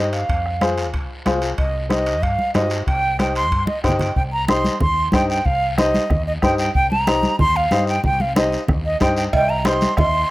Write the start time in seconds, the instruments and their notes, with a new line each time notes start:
Already playing: fretless electric bass G2, upright piano D#4 G4 C5, flute D#5
0.13 flute F5, high timbale, short guiro
0.29 fretless electric bass F2, bombo low, high timbale, long guiro
0.46 bombo rim
0.61 upright piano F4 G#4 C5, bombo rim, high conga, high timbale, short guiro
0.78 high timbale, short guiro
0.94 fretless electric bass C2, bombo low, high timbale, long guiro
1.25 fretless electric bass C2, upright piano F4 G#4 C5, bombo rim, high conga, high timbale, low timbale, short guiro
1.42 high timbale, short guiro
1.58 fretless electric bass C2, flute D#5, bombo low, high timbale, long guiro
1.89 upright piano D#4 G4 C5, flute D#5, bombo rim, high conga, high timbale, short guiro
2.06 high timbale, short guiro
2.22 fretless electric bass G2, flute F5, bombo low, high timbale, long guiro
2.39 high conga
2.54 fretless electric bass G2, upright piano D#4 G4 C5, flute D#5, bombo rim, high conga, high timbale, low timbale, short guiro
2.70 high timbale, short guiro
2.86 fretless electric bass C2, flute G5, bombo low, high timbale, long guiro
3.19 upright piano D#4 G4 C5, flute G5, bombo rim, high conga, high timbale, short guiro
3.35 flute C6, high timbale, short guiro
3.52 fretless electric bass G2, bombo low, high timbale, long guiro
3.67 flute D#5, high conga
3.83 fretless electric bass G2, upright piano D#4 G4 C5, flute G5, bombo low, bombo rim, high timbale, short guiro
3.89 low conga
3.99 flute G5, low conga, high timbale, short guiro
4.16 fretless electric bass C2, flute G5, bombo low, high conga, long guiro
4.32 flute A#5
4.48 upright piano D#4 G4 C5, flute C6, bombo rim, high conga, short guiro
4.64 high conga, short guiro
4.80 fretless electric bass D#2, flute C6, bombo low, high conga, low conga, long guiro
5.12 fretless electric bass G2, upright piano D#4 G4 C5, flute G5, bombo low, bombo rim, high conga, short guiro
5.29 flute G5, short guiro
5.45 fretless electric bass C2, flute F5, bombo low, high conga, long guiro
5.78 upright piano D#4 G4 C5, flute D#5, bombo rim, high conga, short guiro
5.94 high conga, short guiro
6.10 fretless electric bass D#2, bombo low, bombo rim, high conga, low conga, long guiro
6.27 flute D#5
6.42 fretless electric bass G2, upright piano D#4 G4 C5, flute G5, bombo low, bombo rim, high conga, short guiro
6.58 flute G5, short guiro
6.74 fretless electric bass C2, flute G5, bombo low, high conga, long guiro
6.91 flute A#5, high conga
7.07 upright piano D#4 G4 C5, bombo rim, high conga, short guiro
7.23 high conga, short guiro
7.39 fretless electric bass D#2, flute C6, bombo low, high conga, low conga, long guiro
7.56 flute F5
7.71 fretless electric bass G2, upright piano D#4 G4 C5, bombo rim, high conga, short guiro
7.87 flute G5, short guiro
8.03 fretless electric bass C2, flute G5, bombo low, high conga, low conga, long guiro
8.20 flute F5, high conga
8.36 upright piano D#4 G4 C5, flute D#5, bombo rim, high conga, short guiro
8.52 short guiro
8.68 fretless electric bass D#2, bombo low, bombo rim, high conga, low conga, long guiro
8.85 flute D#5
9.00 fretless electric bass G2, upright piano D#4 G4 C5, flute G5, bombo low, bombo rim, high conga, short guiro
9.17 flute G5, short guiro
9.33 fretless electric bass C2, flute G5, bombo low, cowbell, high conga, long guiro
9.49 flute A#5
9.65 upright piano D#4 G4 C5, flute C6, bombo rim, cowbell, high conga, short guiro
9.81 high conga, short guiro
9.97 fretless electric bass D#2, flute C6, bombo low, bombo rim, cowbell, high conga, low conga, long guiro